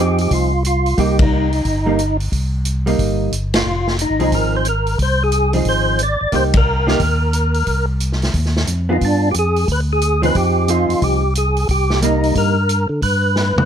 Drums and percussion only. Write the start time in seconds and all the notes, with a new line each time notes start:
0.18 open hi-hat
0.31 kick, open hi-hat
0.65 closed hi-hat
0.86 open hi-hat
0.98 kick, open hi-hat
1.19 kick, ride
1.53 open hi-hat
1.65 kick, open hi-hat
1.99 closed hi-hat
2.20 open hi-hat
2.32 kick, open hi-hat
2.65 closed hi-hat
2.87 open hi-hat
2.99 kick, open hi-hat
3.33 closed hi-hat
3.54 snare, ride
3.87 snare
3.99 closed hi-hat
4.20 open hi-hat
4.32 kick, open hi-hat
4.65 closed hi-hat
4.87 open hi-hat
4.99 kick, open hi-hat
5.32 closed hi-hat
5.53 open hi-hat
5.65 kick, open hi-hat
5.99 closed hi-hat
6.32 kick, open hi-hat
6.54 kick, ride
6.88 snare
7.00 kick, open hi-hat
7.33 closed hi-hat
7.54 open hi-hat
7.67 kick, open hi-hat
8.00 closed hi-hat
8.12 snare
8.22 snare, open hi-hat
8.34 kick, open hi-hat
8.45 snare
8.56 snare
8.67 closed hi-hat
9.01 kick, open hi-hat
9.34 closed hi-hat
9.56 open hi-hat
9.68 kick, open hi-hat
10.02 closed hi-hat
10.23 open hi-hat
10.35 kick, open hi-hat
10.68 closed hi-hat
10.90 open hi-hat
11.02 kick, open hi-hat
11.35 closed hi-hat
11.57 open hi-hat
11.69 kick, open hi-hat
11.90 snare
12.02 closed hi-hat
12.24 open hi-hat
12.35 kick, open hi-hat
12.69 closed hi-hat
13.02 kick, open hi-hat
13.36 snare
13.58 mid tom